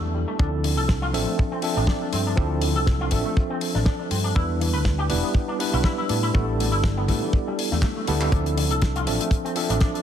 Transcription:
Already playing: E2 G3 B3 D4 E4 A4
0.03 A3
0.14 G3
0.28 A3
0.39 D2 F3 C4 D4 E4 A4, kick
0.64 D3, open hi-hat
0.77 C2 A4
0.89 kick, snare
1.02 F4
1.13 A1 D3 F3 C4 D4 A4 E5, open hi-hat
1.27 A3
1.39 kick
1.52 C4
1.62 F3 C4 D4 A4 E5, open hi-hat
1.76 A1 D4
1.87 D4, kick, snare
2.02 D4
2.13 G2 C4, open hi-hat
2.27 D4
2.36 D2 F3 C4 D4 E4 A4, kick
2.62 D3, open hi-hat
2.76 C2 A4
2.87 kick, snare
3.01 F4
3.10 A1 D3 F3 C4 D4 A4 E5, kick, open hi-hat
3.25 A3
3.37 kick
3.50 C4
3.61 open hi-hat
3.75 A1 D4, snare
3.86 D4, kick, snare
3.99 D4
4.11 G2 C4, open hi-hat
4.24 D4
4.34 E2 G3 B3 D4 E4 B4, kick
4.60 E3, open hi-hat
4.73 D2 B4
4.85 kick, snare
4.98 G4
5.09 E1 E3 G3 B3 D4 E4 B4, open hi-hat
5.23 B3
5.35 kick
5.48 D4
5.59 G3 B3 D4 E4 B4, open hi-hat
5.73 B1 E4
5.84 E4, kick, snare
5.98 E4
6.09 A2 D4, open hi-hat
6.23 E4
6.34 A1 G3 A3 B3 D4 E4 A4, kick
6.59 A2, open hi-hat
6.72 G1 E4
6.84 kick, snare
6.97 B3
7.08 A2 G3 B3 D4 E4 A4, kick, open hi-hat
7.22 E3
7.33 kick
7.48 G3
7.59 open hi-hat
7.72 E2 A3, snare
7.82 A3, kick, snare, clap
7.97 A3
8.07 D2 G3 B3 D4 E4 A4, open hi-hat
8.21 A3, clap
8.31 D2 F3 C4 D4 E4 A4, kick, closed hi-hat
8.46 closed hi-hat
8.58 D3, open hi-hat
8.70 C2 A4, closed hi-hat
8.82 kick, snare, closed hi-hat
8.96 F4, closed hi-hat
9.06 A1 D3 F3 C4 D4 A4 E5, open hi-hat
9.20 A3, closed hi-hat
9.31 kick, closed hi-hat
9.45 C4, closed hi-hat
9.55 F3 C4 D4 A4 E5, open hi-hat
9.70 A1 D4, closed hi-hat
9.80 D4, kick, snare, closed hi-hat
9.94 D4, closed hi-hat

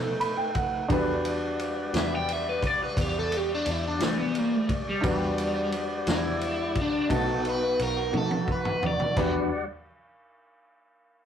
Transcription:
Already playing: B2 A3 D#4 F#4 A4 B4
0.20 B5, ride
0.37 G5
0.55 F#5, kick, ride
0.88 E2 E3 G3 D4 F#4 G4 B4 D5, kick, ride
1.25 ride
1.59 ride
1.93 E2 E3 G3 D4 F#4, snare, ride
1.98 E5
2.16 G5
2.29 E5, ride
2.49 B4
2.63 D5, kick, ride
2.83 B4
2.97 E2 G4, kick, ride
3.19 A4
3.32 ride
3.37 G4
3.55 D4
3.66 E2, ride
3.71 E4
3.88 D4
3.99 E3 G3 A3 D4 F#4, snare, ride
4.19 B3
4.35 A#3, ride
4.55 A3
4.69 kick, ride
4.89 G3
5.01 E2 G3 D4 F#4 G4 B4 D5, kick, ride
5.06 G3
5.38 ride
5.72 ride
6.06 E2 E3 G3 D4 F#4, snare, ride
6.11 E4
6.41 ride
6.75 kick, ride
6.81 D4
7.08 B1 B2 A3 B3 D#4 F#4 A5, kick, ride
7.15 A4
7.45 ride
7.49 B4
7.79 B1 A#4, ride
8.12 B2 A3 D#4 F#4, high tom
8.17 A4
8.31 high tom
8.48 B4, kick
8.65 mid tom
8.83 floor tom
8.87 D5
9.00 floor tom
9.17 E2 E3 G3 D4 F#4 G4 B4 D5 F#5, kick, floor tom, crash

